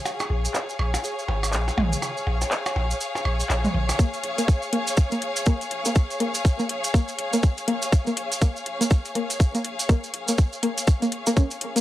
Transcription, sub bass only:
X:1
M:4/4
L:1/8
Q:"Swing 16ths" 1/4=122
K:Bbm
V:1 name="Sub bass" clef=bass
z B,,, z B,,, z A,,, B,,, B,,, | z B,,, z B,,, z B,,, B,,, B,,, | z B,,, z B,,, z A,,, B,,, B,,, | z B,,, z B,,, z A,,, B,,, B,,, |
z B,,, z B,,, z A,,, B,,, B,,, | z B,,, z B,,, z A,,, z B,,, |]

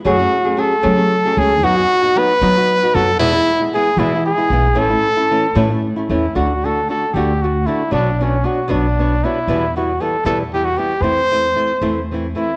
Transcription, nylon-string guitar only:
X:1
M:6/8
L:1/16
Q:3/8=77
K:A
V:1 name="Nylon-string guitar"
[F,,C,F,A,CG] [F,A,CG] z [F,A,CG] [F,A,CG] z [F,,C,F,A,CG] [F,A,CG] z [F,A,CG] [F,A,CG] z | [F,B,^DF] [B,F] z [B,DF] [F,B,DF] z [F,B,DF] [B,DF] z [B,DF] [F,B,DF] z | [E,,B,,E,G,B,E] [E,G,B,E] z [E,G,B,E] [E,G,B,E] z [E,,B,,E,G,B,E] [E,G,B,E] z [E,G,B,E] [E,G,B,E] z | [A,,E,A,CE] [A,CE] z [A,CE] [E,A,CE] z [A,,E,A,CE] [A,CE] z [A,CE] [E,A,CE] z |
[K:D] [D,A,DF] z [D,A,DF] z [D,A,DF] z [D,A,DF] z [D,A,DF] z [D,A,DF] z | [B,,F,B,DFc] z [B,DFc] z [B,DFc] z [B,,F,B,DFc] z [B,DFc] z [B,DFc] z | [E,,B,,E,G,B,E] z [E,G,B,E] z [E,G,B,E] z [E,,B,,E,G,B,E] z [E,G,B,E] z [E,G,B,E] z | [E,A,=CE] z [E,A,CE] z [E,A,CE] z [E,A,CE] z [E,A,CE] z [E,A,CE] z |]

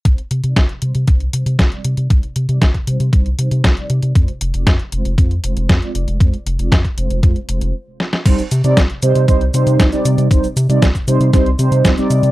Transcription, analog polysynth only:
X:1
M:4/4
L:1/16
Q:1/4=117
K:Cm
V:1 name="Analog polysynth"
[G,CEc] z2 [G,CEd] z2 [G,CEc]2 [G,CEc] z [G,CEc]3 [G,CEd]3 | [G,CEc] z2 [G,CEd] z2 [G,CEc]2 [G,CEc] z [G,CEc]3 [G,CEd]3 | [A,CFc] z2 [A,CFd] z2 [A,CFc]2 [A,CFc] z [A,CFc]3 [A,CFd]3 | [A,CFc] z2 [A,CFd] z2 [A,CFc]2 [A,CFc] z [A,CFc]2 z4 |
[G,CEc] z2 [G,CEd] z2 [G,CEc]2 [G,CEc] z [G,CEc]3 [G,CEd]3 | [G,CEc] z2 [G,CEd] z2 [G,CEc]2 [G,CEc] z [G,CEc]3 [G,CEd]3 |]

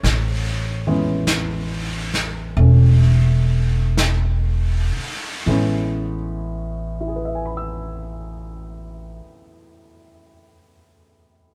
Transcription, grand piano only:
X:1
M:4/4
L:1/8
Q:"Swing" 1/4=40
K:A
V:1 name="Grand piano"
c z6 z | z2 [EGBegbe']6 |]
V:2 name="Grand piano"
z [E,G,B,C]3 [A,C]4 | [A,,E,G,B,C]8 |]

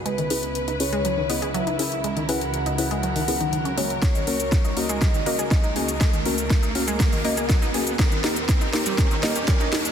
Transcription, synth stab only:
X:1
M:4/4
L:1/8
Q:1/4=121
K:C#dor
V:1 name="Synth stab"
z [CEGB] z [CEGB] z [CEGd] z [CEGA] | z [CEGB] z [CEGB] z [CEGA] z [A,CFc]- | [A,CFc] [A,CFA] z [A,CFA] z [A,CFd] z [A,CFG] | z [A,CFA] z [A,CFA] z [A,CFd] z [A,CFG] |
z [A,D=GA] z [A,DGA] z [A,DGd] z [A,DGA] |]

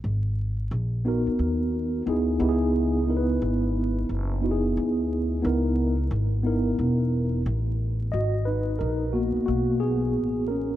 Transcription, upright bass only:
X:1
M:4/4
L:1/16
Q:"Swing 16ths" 1/4=89
K:G#m
V:1 name="Upright bass" clef=bass
G,,,4 A,,,3 z D,,4 =D,,2 C,,2- | C,,4 G,,,4 F,,,4 =D,,4 | C,,4 G,,,4 E,,,4 =A,,,4 | G,,,4 A,,,3 z B,,,4 =A,,,4 |]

